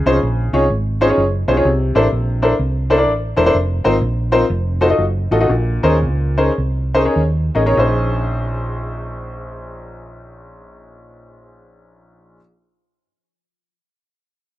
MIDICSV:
0, 0, Header, 1, 3, 480
1, 0, Start_track
1, 0, Key_signature, -5, "minor"
1, 0, Tempo, 474308
1, 1667, Time_signature, 4, 2, 24, 8
1, 4551, Tempo, 500417
1, 5511, Tempo, 538117
1, 6471, Tempo, 595238
1, 7431, Tempo, 632244
1, 12610, End_track
2, 0, Start_track
2, 0, Title_t, "Upright piano"
2, 0, Program_c, 0, 0
2, 0, Note_on_c, 0, 49, 72
2, 61, Note_on_c, 0, 61, 91
2, 66, Note_on_c, 0, 63, 82
2, 66, Note_on_c, 0, 72, 106
2, 68, Note_on_c, 0, 65, 76
2, 70, Note_on_c, 0, 68, 83
2, 165, Note_off_c, 0, 61, 0
2, 167, Note_off_c, 0, 63, 0
2, 168, Note_off_c, 0, 65, 0
2, 168, Note_off_c, 0, 72, 0
2, 170, Note_off_c, 0, 68, 0
2, 500, Note_off_c, 0, 49, 0
2, 539, Note_on_c, 0, 61, 90
2, 544, Note_on_c, 0, 63, 80
2, 544, Note_on_c, 0, 65, 84
2, 544, Note_on_c, 0, 68, 83
2, 545, Note_on_c, 0, 73, 101
2, 644, Note_off_c, 0, 61, 0
2, 646, Note_off_c, 0, 63, 0
2, 646, Note_off_c, 0, 65, 0
2, 646, Note_off_c, 0, 68, 0
2, 646, Note_off_c, 0, 73, 0
2, 1021, Note_on_c, 0, 61, 97
2, 1023, Note_on_c, 0, 63, 93
2, 1023, Note_on_c, 0, 65, 92
2, 1025, Note_on_c, 0, 68, 93
2, 1028, Note_on_c, 0, 72, 107
2, 1072, Note_off_c, 0, 61, 0
2, 1073, Note_off_c, 0, 63, 0
2, 1073, Note_off_c, 0, 65, 0
2, 1074, Note_off_c, 0, 68, 0
2, 1075, Note_off_c, 0, 72, 0
2, 1105, Note_on_c, 0, 61, 81
2, 1107, Note_on_c, 0, 63, 77
2, 1107, Note_on_c, 0, 65, 73
2, 1109, Note_on_c, 0, 73, 89
2, 1112, Note_on_c, 0, 68, 78
2, 1224, Note_off_c, 0, 61, 0
2, 1225, Note_off_c, 0, 63, 0
2, 1225, Note_off_c, 0, 65, 0
2, 1226, Note_off_c, 0, 73, 0
2, 1228, Note_off_c, 0, 68, 0
2, 1496, Note_on_c, 0, 61, 89
2, 1498, Note_on_c, 0, 63, 73
2, 1498, Note_on_c, 0, 65, 82
2, 1500, Note_on_c, 0, 68, 83
2, 1500, Note_on_c, 0, 72, 98
2, 1549, Note_off_c, 0, 61, 0
2, 1550, Note_off_c, 0, 63, 0
2, 1550, Note_off_c, 0, 65, 0
2, 1551, Note_off_c, 0, 68, 0
2, 1551, Note_off_c, 0, 72, 0
2, 1584, Note_on_c, 0, 63, 80
2, 1585, Note_on_c, 0, 65, 81
2, 1585, Note_on_c, 0, 68, 78
2, 1586, Note_on_c, 0, 61, 89
2, 1587, Note_on_c, 0, 73, 91
2, 1668, Note_off_c, 0, 63, 0
2, 1668, Note_off_c, 0, 65, 0
2, 1668, Note_off_c, 0, 68, 0
2, 1669, Note_off_c, 0, 61, 0
2, 1669, Note_off_c, 0, 73, 0
2, 1671, Note_on_c, 0, 48, 78
2, 1974, Note_on_c, 0, 62, 90
2, 1976, Note_on_c, 0, 64, 92
2, 1979, Note_on_c, 0, 69, 91
2, 1980, Note_on_c, 0, 70, 77
2, 1982, Note_on_c, 0, 72, 101
2, 2080, Note_off_c, 0, 62, 0
2, 2080, Note_off_c, 0, 64, 0
2, 2082, Note_off_c, 0, 69, 0
2, 2082, Note_off_c, 0, 70, 0
2, 2083, Note_off_c, 0, 72, 0
2, 2416, Note_off_c, 0, 48, 0
2, 2452, Note_on_c, 0, 62, 90
2, 2454, Note_on_c, 0, 64, 81
2, 2455, Note_on_c, 0, 69, 84
2, 2456, Note_on_c, 0, 72, 96
2, 2457, Note_on_c, 0, 70, 81
2, 2558, Note_off_c, 0, 62, 0
2, 2559, Note_off_c, 0, 64, 0
2, 2560, Note_off_c, 0, 69, 0
2, 2560, Note_off_c, 0, 70, 0
2, 2560, Note_off_c, 0, 72, 0
2, 2934, Note_on_c, 0, 64, 80
2, 2935, Note_on_c, 0, 62, 100
2, 2937, Note_on_c, 0, 69, 91
2, 2939, Note_on_c, 0, 70, 88
2, 2940, Note_on_c, 0, 72, 102
2, 2986, Note_off_c, 0, 64, 0
2, 2987, Note_off_c, 0, 62, 0
2, 2988, Note_off_c, 0, 69, 0
2, 2988, Note_off_c, 0, 70, 0
2, 2989, Note_off_c, 0, 72, 0
2, 3012, Note_on_c, 0, 69, 75
2, 3013, Note_on_c, 0, 62, 85
2, 3013, Note_on_c, 0, 64, 76
2, 3016, Note_on_c, 0, 70, 74
2, 3019, Note_on_c, 0, 74, 91
2, 3136, Note_off_c, 0, 62, 0
2, 3136, Note_off_c, 0, 64, 0
2, 3136, Note_off_c, 0, 69, 0
2, 3138, Note_off_c, 0, 70, 0
2, 3140, Note_off_c, 0, 74, 0
2, 3405, Note_on_c, 0, 64, 89
2, 3407, Note_on_c, 0, 62, 82
2, 3410, Note_on_c, 0, 69, 82
2, 3412, Note_on_c, 0, 70, 84
2, 3412, Note_on_c, 0, 72, 109
2, 3461, Note_off_c, 0, 64, 0
2, 3462, Note_off_c, 0, 62, 0
2, 3464, Note_off_c, 0, 69, 0
2, 3465, Note_off_c, 0, 70, 0
2, 3465, Note_off_c, 0, 72, 0
2, 3502, Note_on_c, 0, 62, 96
2, 3502, Note_on_c, 0, 64, 76
2, 3503, Note_on_c, 0, 69, 84
2, 3506, Note_on_c, 0, 70, 75
2, 3506, Note_on_c, 0, 72, 104
2, 3585, Note_off_c, 0, 62, 0
2, 3585, Note_off_c, 0, 64, 0
2, 3585, Note_off_c, 0, 69, 0
2, 3587, Note_off_c, 0, 70, 0
2, 3587, Note_off_c, 0, 72, 0
2, 3890, Note_on_c, 0, 60, 96
2, 3891, Note_on_c, 0, 63, 89
2, 3893, Note_on_c, 0, 70, 88
2, 3894, Note_on_c, 0, 65, 85
2, 3895, Note_on_c, 0, 72, 107
2, 3996, Note_off_c, 0, 60, 0
2, 3997, Note_off_c, 0, 63, 0
2, 3998, Note_off_c, 0, 70, 0
2, 3999, Note_off_c, 0, 65, 0
2, 3999, Note_off_c, 0, 72, 0
2, 4370, Note_on_c, 0, 63, 79
2, 4370, Note_on_c, 0, 65, 91
2, 4372, Note_on_c, 0, 70, 91
2, 4373, Note_on_c, 0, 60, 92
2, 4374, Note_on_c, 0, 72, 107
2, 4481, Note_off_c, 0, 63, 0
2, 4481, Note_off_c, 0, 65, 0
2, 4482, Note_off_c, 0, 60, 0
2, 4482, Note_off_c, 0, 70, 0
2, 4483, Note_off_c, 0, 72, 0
2, 4850, Note_on_c, 0, 63, 93
2, 4850, Note_on_c, 0, 66, 85
2, 4852, Note_on_c, 0, 65, 86
2, 4852, Note_on_c, 0, 69, 86
2, 4857, Note_on_c, 0, 72, 105
2, 4905, Note_off_c, 0, 63, 0
2, 4905, Note_off_c, 0, 66, 0
2, 4906, Note_off_c, 0, 65, 0
2, 4906, Note_off_c, 0, 69, 0
2, 4908, Note_off_c, 0, 72, 0
2, 4934, Note_on_c, 0, 66, 76
2, 4935, Note_on_c, 0, 63, 81
2, 4936, Note_on_c, 0, 65, 78
2, 4936, Note_on_c, 0, 69, 75
2, 4938, Note_on_c, 0, 75, 91
2, 5058, Note_off_c, 0, 63, 0
2, 5058, Note_off_c, 0, 66, 0
2, 5058, Note_off_c, 0, 69, 0
2, 5059, Note_off_c, 0, 65, 0
2, 5059, Note_off_c, 0, 75, 0
2, 5334, Note_on_c, 0, 63, 84
2, 5334, Note_on_c, 0, 65, 85
2, 5335, Note_on_c, 0, 66, 83
2, 5338, Note_on_c, 0, 75, 100
2, 5341, Note_on_c, 0, 69, 89
2, 5389, Note_off_c, 0, 63, 0
2, 5389, Note_off_c, 0, 65, 0
2, 5390, Note_off_c, 0, 66, 0
2, 5391, Note_off_c, 0, 75, 0
2, 5393, Note_off_c, 0, 69, 0
2, 5421, Note_on_c, 0, 65, 82
2, 5421, Note_on_c, 0, 66, 78
2, 5423, Note_on_c, 0, 63, 92
2, 5423, Note_on_c, 0, 69, 79
2, 5424, Note_on_c, 0, 75, 92
2, 5508, Note_on_c, 0, 46, 72
2, 5510, Note_off_c, 0, 65, 0
2, 5510, Note_off_c, 0, 66, 0
2, 5511, Note_off_c, 0, 63, 0
2, 5511, Note_off_c, 0, 69, 0
2, 5512, Note_off_c, 0, 75, 0
2, 5809, Note_on_c, 0, 61, 89
2, 5809, Note_on_c, 0, 70, 92
2, 5810, Note_on_c, 0, 68, 86
2, 5811, Note_on_c, 0, 63, 84
2, 5812, Note_on_c, 0, 72, 101
2, 5914, Note_off_c, 0, 61, 0
2, 5914, Note_off_c, 0, 70, 0
2, 5915, Note_off_c, 0, 63, 0
2, 5915, Note_off_c, 0, 68, 0
2, 5916, Note_off_c, 0, 72, 0
2, 6258, Note_off_c, 0, 46, 0
2, 6293, Note_on_c, 0, 61, 87
2, 6293, Note_on_c, 0, 63, 77
2, 6294, Note_on_c, 0, 68, 82
2, 6295, Note_on_c, 0, 72, 96
2, 6298, Note_on_c, 0, 70, 82
2, 6402, Note_off_c, 0, 63, 0
2, 6403, Note_off_c, 0, 61, 0
2, 6403, Note_off_c, 0, 68, 0
2, 6403, Note_off_c, 0, 72, 0
2, 6405, Note_off_c, 0, 70, 0
2, 6769, Note_on_c, 0, 61, 93
2, 6769, Note_on_c, 0, 68, 81
2, 6770, Note_on_c, 0, 70, 76
2, 6770, Note_on_c, 0, 72, 107
2, 6771, Note_on_c, 0, 63, 85
2, 6821, Note_off_c, 0, 61, 0
2, 6821, Note_off_c, 0, 68, 0
2, 6821, Note_off_c, 0, 70, 0
2, 6821, Note_off_c, 0, 72, 0
2, 6822, Note_off_c, 0, 63, 0
2, 6853, Note_on_c, 0, 68, 77
2, 6854, Note_on_c, 0, 61, 78
2, 6855, Note_on_c, 0, 63, 74
2, 6857, Note_on_c, 0, 70, 67
2, 6860, Note_on_c, 0, 73, 85
2, 6973, Note_off_c, 0, 68, 0
2, 6974, Note_off_c, 0, 61, 0
2, 6974, Note_off_c, 0, 63, 0
2, 6975, Note_off_c, 0, 70, 0
2, 6977, Note_off_c, 0, 73, 0
2, 7255, Note_on_c, 0, 61, 87
2, 7257, Note_on_c, 0, 70, 75
2, 7258, Note_on_c, 0, 63, 81
2, 7258, Note_on_c, 0, 68, 79
2, 7262, Note_on_c, 0, 75, 89
2, 7309, Note_off_c, 0, 61, 0
2, 7310, Note_off_c, 0, 63, 0
2, 7310, Note_off_c, 0, 68, 0
2, 7310, Note_off_c, 0, 70, 0
2, 7312, Note_off_c, 0, 75, 0
2, 7348, Note_on_c, 0, 61, 84
2, 7348, Note_on_c, 0, 63, 75
2, 7348, Note_on_c, 0, 68, 73
2, 7348, Note_on_c, 0, 70, 81
2, 7352, Note_on_c, 0, 73, 99
2, 7411, Note_off_c, 0, 61, 0
2, 7422, Note_off_c, 0, 63, 0
2, 7423, Note_on_c, 0, 61, 81
2, 7434, Note_off_c, 0, 68, 0
2, 7434, Note_on_c, 0, 63, 82
2, 7435, Note_off_c, 0, 70, 0
2, 7437, Note_off_c, 0, 73, 0
2, 7439, Note_on_c, 0, 34, 80
2, 7445, Note_on_c, 0, 68, 75
2, 7453, Note_on_c, 0, 72, 91
2, 10914, Note_off_c, 0, 61, 0
2, 10925, Note_off_c, 0, 63, 0
2, 10929, Note_off_c, 0, 34, 0
2, 10936, Note_off_c, 0, 68, 0
2, 10943, Note_off_c, 0, 72, 0
2, 12610, End_track
3, 0, Start_track
3, 0, Title_t, "Fingered electric bass"
3, 0, Program_c, 1, 33
3, 57, Note_on_c, 1, 36, 100
3, 203, Note_off_c, 1, 36, 0
3, 234, Note_on_c, 1, 34, 96
3, 495, Note_off_c, 1, 34, 0
3, 537, Note_on_c, 1, 36, 94
3, 682, Note_off_c, 1, 36, 0
3, 711, Note_on_c, 1, 32, 91
3, 1117, Note_off_c, 1, 32, 0
3, 1190, Note_on_c, 1, 30, 83
3, 1452, Note_off_c, 1, 30, 0
3, 1497, Note_on_c, 1, 35, 101
3, 1641, Note_off_c, 1, 35, 0
3, 1670, Note_on_c, 1, 36, 101
3, 1931, Note_off_c, 1, 36, 0
3, 1979, Note_on_c, 1, 33, 96
3, 2122, Note_off_c, 1, 33, 0
3, 2150, Note_on_c, 1, 34, 86
3, 2555, Note_off_c, 1, 34, 0
3, 2625, Note_on_c, 1, 36, 89
3, 3104, Note_off_c, 1, 36, 0
3, 3104, Note_on_c, 1, 33, 82
3, 3367, Note_off_c, 1, 33, 0
3, 3414, Note_on_c, 1, 28, 95
3, 3558, Note_off_c, 1, 28, 0
3, 3586, Note_on_c, 1, 29, 97
3, 3848, Note_off_c, 1, 29, 0
3, 3899, Note_on_c, 1, 32, 91
3, 4042, Note_off_c, 1, 32, 0
3, 4065, Note_on_c, 1, 34, 91
3, 4479, Note_off_c, 1, 34, 0
3, 4552, Note_on_c, 1, 29, 111
3, 4954, Note_off_c, 1, 29, 0
3, 5018, Note_on_c, 1, 30, 83
3, 5287, Note_off_c, 1, 30, 0
3, 5332, Note_on_c, 1, 33, 94
3, 5483, Note_off_c, 1, 33, 0
3, 5505, Note_on_c, 1, 34, 97
3, 5764, Note_off_c, 1, 34, 0
3, 5813, Note_on_c, 1, 39, 92
3, 5982, Note_on_c, 1, 37, 91
3, 5996, Note_off_c, 1, 39, 0
3, 6399, Note_off_c, 1, 37, 0
3, 6476, Note_on_c, 1, 36, 81
3, 6871, Note_off_c, 1, 36, 0
3, 6944, Note_on_c, 1, 39, 89
3, 7210, Note_off_c, 1, 39, 0
3, 7261, Note_on_c, 1, 33, 88
3, 7410, Note_off_c, 1, 33, 0
3, 7436, Note_on_c, 1, 34, 92
3, 10927, Note_off_c, 1, 34, 0
3, 12610, End_track
0, 0, End_of_file